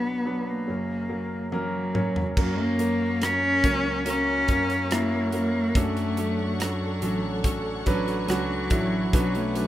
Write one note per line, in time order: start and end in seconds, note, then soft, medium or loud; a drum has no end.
0.00 0.65 B1 soft
0.00 0.64 B2 soft
0.00 0.25 F#3 medium
0.00 0.26 B3 medium
0.00 0.52 B3 medium
0.00 0.26 D4 medium
0.00 0.26 B4 medium
0.25 0.66 F#3 medium
0.25 0.66 B3 medium
0.25 0.66 D4 medium
0.25 0.66 B4 medium
0.50 1.54 A#3 medium
0.67 2.33 F#1 soft
0.67 2.33 F#2 soft
0.67 1.08 F#3 medium
0.67 1.08 A#3 medium
0.67 1.08 C#4 medium
0.67 1.09 A#4 medium
1.09 1.50 F#3 medium
1.09 1.50 A#3 medium
1.09 1.50 C#4 medium
1.09 1.51 A#4 medium
1.52 1.93 F#3 medium
1.52 2.34 F#3 medium
1.52 1.93 A#3 medium
1.52 1.93 C#4 medium
1.52 1.93 A#4 medium
1.52 high tom soft
1.94 2.35 F#3 medium
1.94 2.35 A#3 medium
1.94 2.35 C#4 medium
1.94 2.35 C#5 medium
1.94 mid tom medium
2.16 floor tom medium
2.37 3.60 F#2 medium
2.37 2.77 F#3 medium
2.37 4.06 F#3 medium
2.37 2.63 F#3 medium
2.37 2.78 A#3 medium
2.37 2.78 C#4 medium
2.37 5.72 A#4 medium
2.37 2.78 A#4 medium
2.37 5.73 C#5 medium
2.37 9.67 F#5 medium
2.37 9.67 C#6 medium
2.37 kick medium
2.37 crash medium
2.59 3.25 A#3 medium
2.59 3.43 C#4 soft
2.79 3.19 F#3 medium
2.79 3.20 A#3 medium
2.79 3.21 A#3 soft
2.79 3.20 C#4 soft
2.79 3.20 A#4 medium
2.79 closed hi-hat medium
3.01 3.85 F#4 medium
3.21 3.62 F#3 medium
3.21 3.62 A#3 soft
3.21 3.64 A#3 medium
3.21 3.62 C#4 soft
3.21 4.07 C#4 medium
3.21 3.62 A#4 medium
3.21 cross-stick medium
3.21 closed hi-hat medium
3.43 4.27 C#4 soft
3.64 4.45 C#2 medium
3.64 4.04 F#3 medium
3.64 4.04 A#3 medium
3.64 4.48 A#3 soft
3.64 4.05 C#4 medium
3.64 4.05 A#4 medium
3.64 kick medium
3.64 closed hi-hat medium
3.86 4.69 F#4 soft
4.06 4.46 F#3 medium
4.06 6.59 F#3 medium
4.06 4.47 A#3 medium
4.06 4.47 C#4 medium
4.06 4.95 C#4 medium
4.06 4.47 A#4 medium
4.06 closed hi-hat medium
4.48 5.71 F#2 medium
4.48 4.89 F#3 medium
4.48 4.90 A#3 soft
4.48 4.89 A#3 medium
4.48 4.89 C#4 medium
4.48 4.90 A#4 medium
4.48 kick medium
4.48 closed hi-hat medium
4.69 5.54 F#4 medium
4.69 closed hi-hat soft
4.91 5.31 F#3 medium
4.91 5.32 A#3 medium
4.91 5.31 A#3 medium
4.91 5.34 A#3 medium
4.91 5.31 C#4 medium
4.91 5.32 E4 medium
4.91 cross-stick medium
4.91 closed hi-hat medium
5.13 5.96 C#4 soft
5.32 5.74 F#3 medium
5.32 5.84 A#3 soft
5.32 5.73 A#3 medium
5.32 5.79 A#3 medium
5.32 5.74 C#4 medium
5.32 5.74 A#4 medium
5.32 closed hi-hat medium
5.54 6.38 F#4 medium
5.75 7.43 F#2 medium
5.75 6.98 F#2 medium
5.75 6.16 F#3 medium
5.75 6.64 A3 medium
5.75 6.16 C#4 medium
5.75 6.16 D4 medium
5.75 9.10 A4 medium
5.75 6.16 A4 medium
5.75 9.67 C#5 medium
5.75 kick medium
5.75 closed hi-hat medium
5.97 6.81 D4 soft
5.97 closed hi-hat soft
6.17 6.58 F#3 medium
6.17 7.01 A3 soft
6.17 6.58 C#4 medium
6.17 6.58 D4 medium
6.17 6.58 A4 medium
6.17 closed hi-hat medium
6.39 7.23 F#4 medium
6.59 7.00 F#3 medium
6.59 8.29 F#3 medium
6.59 7.46 F#3 medium
6.59 7.00 C#4 medium
6.59 7.00 D4 medium
6.59 7.00 A4 medium
6.59 cross-stick medium
6.59 closed hi-hat medium
6.81 7.65 D4 medium
7.01 7.82 A1 medium
7.01 7.42 F#3 medium
7.01 7.85 A3 soft
7.01 7.43 C#4 medium
7.01 7.43 D4 medium
7.01 7.43 A4 medium
7.01 closed hi-hat medium
7.23 8.07 F#4 medium
7.44 9.13 F#2 medium
7.44 7.84 F#3 medium
7.44 7.85 C#4 medium
7.44 7.85 D4 medium
7.44 7.85 A4 medium
7.44 kick medium
7.44 closed hi-hat medium
7.65 8.50 D4 soft
7.86 8.26 A1 medium
7.86 8.27 F#3 medium
7.86 8.70 A3 soft
7.86 8.27 C#4 medium
7.86 8.27 D4 medium
7.86 8.27 B4 loud
7.86 kick medium
7.86 closed hi-hat medium
8.07 8.92 F#4 medium
8.07 closed hi-hat soft
8.28 8.68 C#2 medium
8.28 8.69 F#3 medium
8.28 9.67 F#3 medium
8.28 9.10 F#3 medium
8.28 8.69 C#4 medium
8.28 8.69 D4 medium
8.28 8.70 F#4 medium
8.28 cross-stick medium
8.28 closed hi-hat medium
8.51 9.34 D4 soft
8.70 9.10 A1 medium
8.70 9.11 F#3 medium
8.70 9.22 A3 medium
8.70 9.11 C#4 medium
8.70 9.11 D4 medium
8.70 9.12 E4 medium
8.70 kick medium
8.70 closed hi-hat medium
8.92 9.35 F#4 medium
9.13 9.67 B1 medium
9.13 9.67 B2 medium
9.13 9.54 F#3 medium
9.13 9.37 F#3 medium
9.13 9.54 C#4 medium
9.13 9.54 D4 medium
9.13 9.54 B4 medium
9.13 9.67 B4 medium
9.13 kick medium
9.13 closed hi-hat medium
9.35 9.67 A3 medium
9.35 9.67 F#4 medium
9.35 closed hi-hat soft
9.55 9.67 F#3 medium
9.55 9.67 C#4 soft
9.55 9.67 D4 medium
9.55 9.67 B4 medium
9.55 closed hi-hat medium